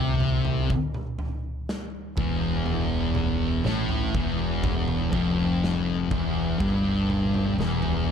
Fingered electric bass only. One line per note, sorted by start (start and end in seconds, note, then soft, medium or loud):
0.00 0.67 C2 loud
2.18 3.61 E1 medium
3.66 4.12 A1 loud
4.15 5.09 E1 loud
5.13 6.07 F1 medium
6.12 6.57 E1 medium
6.61 7.55 G1 medium
7.59 8.12 E1 loud